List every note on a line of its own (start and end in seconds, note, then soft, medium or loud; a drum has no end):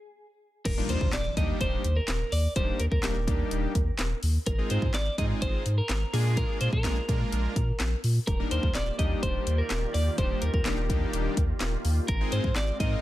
0.65 0.81 D#1 loud
0.65 0.71 D#4 medium
0.65 0.71 G4 medium
0.65 0.90 A#4 loud
0.65 kick loud
0.65 closed hi-hat medium
0.65 crash loud
0.65 impact medium
0.77 1.06 G3 medium
0.77 1.06 A#3 medium
0.77 1.06 D4 medium
0.77 1.06 D#4 medium
0.77 1.06 F4 medium
0.89 0.97 D#2 loud
0.89 1.13 C5 medium
0.89 closed hi-hat medium
1.01 1.09 D#2 loud
1.01 kick loud
1.12 1.29 D#1 loud
1.12 1.35 D5 loud
1.12 snare medium
1.12 clap loud
1.12 closed hi-hat medium
1.37 1.52 D#2 loud
1.37 1.82 G3 medium
1.37 1.82 A#3 medium
1.37 1.82 D4 medium
1.37 1.82 D#4 medium
1.37 1.83 G4 medium
1.37 1.61 D#5 loud
1.37 kick loud
1.37 closed hi-hat medium
1.61 1.76 D#1 loud
1.61 1.98 C5 loud
1.61 kick loud
1.61 closed hi-hat medium
1.84 2.00 D#2 loud
1.84 closed hi-hat medium
1.97 2.33 A#4 loud
2.08 2.24 D#1 loud
2.08 snare medium
2.08 clap loud
2.08 closed hi-hat medium
2.32 2.48 D#2 loud
2.32 2.56 D5 loud
2.32 open hi-hat medium
2.56 2.72 D#1 loud
2.56 2.79 G3 medium
2.56 2.79 A#3 medium
2.56 2.79 D4 medium
2.56 2.79 D#4 medium
2.56 2.79 G4 medium
2.56 2.81 C5 loud
2.56 kick loud
2.56 closed hi-hat medium
2.80 2.87 D#2 loud
2.80 2.85 A#4 medium
2.80 closed hi-hat medium
2.92 2.99 D#2 loud
2.92 4.19 A#4 medium
2.92 kick medium
3.03 3.29 D#1 loud
3.03 3.15 G3 medium
3.03 3.15 A#3 medium
3.03 3.15 D4 medium
3.03 3.15 D#4 medium
3.03 3.15 G4 medium
3.03 snare medium
3.03 clap loud
3.03 closed hi-hat medium
3.27 3.43 D#2 loud
3.27 3.73 G3 medium
3.27 3.73 A#3 medium
3.27 3.73 D4 medium
3.27 3.73 D#4 medium
3.27 3.73 G4 medium
3.27 kick loud
3.27 closed hi-hat medium
3.51 3.67 D#1 loud
3.51 closed hi-hat medium
3.75 3.91 D#2 loud
3.75 kick loud
3.75 closed hi-hat medium
3.99 4.14 D#1 medium
3.99 snare medium
3.99 clap loud
3.99 closed hi-hat medium
4.23 4.38 D#2 loud
4.23 open hi-hat medium
4.46 4.62 G#1 loud
4.46 4.52 F4 medium
4.46 4.52 G#4 medium
4.46 4.71 A#4 loud
4.46 kick loud
4.46 closed hi-hat medium
4.58 4.87 G#3 medium
4.58 4.87 C4 medium
4.58 4.87 D#4 medium
4.58 4.87 F4 medium
4.58 4.87 G#4 medium
4.70 4.78 G#2 loud
4.70 4.94 C5 loud
4.70 closed hi-hat medium
4.82 4.90 G#2 loud
4.82 kick loud
4.94 5.10 G#1 loud
4.94 5.18 D5 loud
4.94 snare medium
4.94 clap loud
4.94 closed hi-hat medium
5.18 5.34 G#2 loud
5.18 5.63 G#3 medium
5.18 5.64 C4 medium
5.18 5.64 D#4 medium
5.18 5.64 F4 medium
5.18 5.64 G#4 medium
5.18 5.25 D#5 loud
5.18 kick medium
5.18 closed hi-hat medium
5.42 5.57 G#1 loud
5.42 5.77 C5 loud
5.42 kick medium
5.42 closed hi-hat medium
5.66 5.81 G#2 loud
5.66 closed hi-hat medium
5.78 6.14 A#4 loud
5.89 6.05 G#1 loud
5.89 snare medium
5.89 clap loud
5.89 closed hi-hat medium
6.13 6.44 A#2 loud
6.13 6.70 G#3 medium
6.13 6.70 A#3 medium
6.13 6.70 D4 medium
6.13 6.71 F4 medium
6.13 6.38 G#4 medium
6.13 6.71 G#4 medium
6.13 open hi-hat medium
6.37 6.61 A#4 loud
6.37 kick loud
6.37 closed hi-hat medium
6.61 6.69 A#2 loud
6.61 6.72 C5 medium
6.61 closed hi-hat medium
6.73 6.86 A#2 loud
6.73 8.00 A#4 medium
6.73 kick medium
6.84 7.00 A#1 loud
6.84 6.96 G#3 medium
6.84 6.96 A#3 medium
6.84 6.96 D4 medium
6.84 6.96 F4 medium
6.84 6.96 G#4 medium
6.84 snare medium
6.84 clap loud
6.84 closed hi-hat medium
7.08 7.24 A#2 loud
7.08 7.54 G#3 medium
7.08 7.54 A#3 medium
7.08 7.54 D4 medium
7.08 7.54 F4 medium
7.08 7.54 A#4 medium
7.08 kick loud
7.08 closed hi-hat medium
7.32 7.48 A#1 medium
7.32 closed hi-hat medium
7.56 7.72 A#2 loud
7.56 kick loud
7.56 closed hi-hat medium
7.80 7.95 A#1 loud
7.80 snare medium
7.80 clap loud
7.80 closed hi-hat medium
8.04 8.19 A#2 loud
8.04 open hi-hat medium
8.27 8.43 D#1 loud
8.27 12.05 D#3 medium
8.27 12.05 A#3 medium
8.27 8.33 D#4 medium
8.27 13.01 F4 medium
8.27 12.05 G4 medium
8.27 8.33 G4 medium
8.27 8.50 A#4 loud
8.27 12.05 D5 medium
8.27 kick loud
8.27 closed hi-hat medium
8.39 8.68 G3 medium
8.39 8.68 A#3 medium
8.39 8.68 D4 medium
8.39 8.68 D#4 medium
8.39 8.68 A#4 medium
8.51 8.59 D#2 loud
8.51 8.75 C5 medium
8.51 closed hi-hat medium
8.63 8.71 D#2 medium
8.63 kick loud
8.75 8.91 D#1 loud
8.75 8.98 D5 loud
8.75 snare medium
8.75 clap loud
8.75 closed hi-hat medium
8.99 9.14 D#2 loud
8.99 9.44 G3 medium
8.99 9.44 A#3 medium
8.99 9.44 D4 medium
8.99 9.45 D#4 medium
8.99 9.45 G4 medium
8.99 9.22 D#5 loud
8.99 kick loud
8.99 closed hi-hat medium
9.23 9.38 D#1 loud
9.23 9.60 C5 loud
9.23 kick loud
9.23 closed hi-hat medium
9.47 9.62 D#2 loud
9.47 closed hi-hat medium
9.58 9.95 A#4 medium
9.70 9.86 D#1 loud
9.70 snare medium
9.70 clap loud
9.70 closed hi-hat medium
9.94 10.10 D#2 loud
9.94 10.18 D5 loud
9.94 open hi-hat medium
10.18 10.34 D#1 loud
10.18 10.41 G3 medium
10.18 10.41 A#3 medium
10.18 10.41 D4 medium
10.18 10.41 D#4 medium
10.18 10.41 G4 medium
10.18 10.43 C5 loud
10.18 kick loud
10.18 closed hi-hat medium
10.42 10.50 D#2 medium
10.42 10.53 A#4 medium
10.42 closed hi-hat medium
10.54 10.61 D#2 loud
10.54 11.81 A#4 medium
10.54 kick medium
10.65 10.91 D#1 loud
10.65 10.77 G3 medium
10.65 10.77 A#3 medium
10.65 10.77 D4 medium
10.65 10.77 D#4 medium
10.65 10.77 G4 medium
10.65 snare medium
10.65 clap loud
10.65 closed hi-hat medium
10.89 11.05 D#2 loud
10.89 11.35 G3 medium
10.89 11.35 A#3 medium
10.89 11.35 D4 medium
10.89 11.35 D#4 medium
10.89 11.35 G4 medium
10.89 kick loud
10.89 closed hi-hat medium
11.13 11.29 D#1 loud
11.13 closed hi-hat medium
11.37 11.53 D#2 loud
11.37 kick loud
11.37 closed hi-hat medium
11.60 11.76 D#1 medium
11.60 snare medium
11.60 clap loud
11.60 closed hi-hat medium
11.85 12.00 D#2 loud
11.85 open hi-hat medium
12.08 12.24 G#1 loud
12.08 13.01 G#3 medium
12.08 13.01 C4 medium
12.08 12.14 F4 medium
12.08 12.14 G#4 medium
12.08 12.33 A#4 medium
12.08 kick loud
12.08 closed hi-hat medium
12.21 12.49 G#3 medium
12.21 12.49 C4 medium
12.21 12.49 D#4 medium
12.21 12.49 F4 medium
12.21 12.49 G#4 medium
12.32 12.40 G#2 loud
12.32 12.56 C5 medium
12.32 closed hi-hat medium
12.44 12.52 G#2 loud
12.44 kick loud
12.56 12.72 G#1 loud
12.56 12.80 D5 loud
12.56 snare medium
12.56 clap loud
12.56 closed hi-hat medium
12.80 12.95 G#2 loud
12.80 13.01 G#3 medium
12.80 13.01 C4 medium
12.80 13.01 D#4 medium
12.80 13.01 F4 medium
12.80 13.01 A#4 medium
12.80 13.01 D#5 loud
12.80 kick loud
12.80 closed hi-hat medium